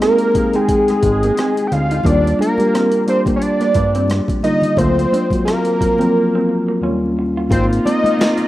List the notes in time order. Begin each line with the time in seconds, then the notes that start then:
Already playing: G#3 C4 D#4 G4 G#4
0.02 A#3 A#4, cross-stick, closed hi-hat
0.18 closed hi-hat
0.34 G#3 C4 D#4 G#4, muted clean electric guitar stroke, kick, closed hi-hat
0.53 G#3 C4 D#4 G#4 G5, closed hi-hat
0.69 kick, closed hi-hat
0.88 G#3, cross-stick, closed hi-hat
1.03 G#1, muted clean electric guitar stroke, kick, closed hi-hat
1.23 A#3, closed hi-hat
1.37 C4, cross-stick, closed hi-hat
1.57 closed hi-hat
1.67 G5
1.72 D2 F5, muted clean electric guitar stroke, cross-stick, closed hi-hat
1.91 D#4, closed hi-hat
2.03 D#2 G3 A#3 D4 F4 D5, kick, closed hi-hat, muted conga, low conga
2.24 closed hi-hat, muted conga
2.39 D4 A#4, closed hi-hat, high conga
2.58 G3 A#3 D4 G4, closed hi-hat, high conga
2.74 C4, cross-stick, closed hi-hat
2.92 closed hi-hat
3.07 G3 A#3 D4 G4 C5, muted clean electric guitar stroke, closed hi-hat
3.25 A#3, kick, closed hi-hat, low conga
3.36 C#5
3.42 D5, closed hi-hat
3.60 A#3, cross-stick, closed hi-hat, muted conga
3.74 G2, muted clean electric guitar stroke, kick, closed hi-hat, high conga
3.95 C4, closed hi-hat
4.08 cross-stick, closed hi-hat, high conga
4.28 kick, closed hi-hat, muted conga
4.43 D3 G3 A#3 F4 D#5, cross-stick, closed hi-hat, high conga
4.62 closed hi-hat, low conga
4.76 D2 F#3 A#3 C4 F4 C5, kick, closed hi-hat, muted conga, low conga
4.99 closed hi-hat
5.12 D4, closed hi-hat, high conga
5.30 F#3 A#3 C4 F#4, kick, closed hi-hat, high conga
5.45 A#3 A#4, cross-stick, closed hi-hat, muted conga
5.65 closed hi-hat
5.79 F#3 A#3 C4 F4, muted clean electric guitar stroke, kick, closed hi-hat
5.98 F3 A#3 C4 F4, closed hi-hat, low conga
6.05 F#3
6.35 C4
6.49 muted clean electric guitar stroke
6.68 A#3
6.81 D#2 F#3 A#3 C#4 F4
6.88 G3
7.19 muted clean electric guitar stroke
7.37 F4
7.48 G#1 C3 A#3 C4 D#4 F4 C5, kick, closed hi-hat, low conga
7.71 closed hi-hat, muted conga
7.85 C4 D#5, closed hi-hat, high conga
8.03 A#3 C4 D#4 F4, closed hi-hat, high conga
8.19 finger snap, snare, closed hi-hat, muted conga
8.38 closed hi-hat, muted conga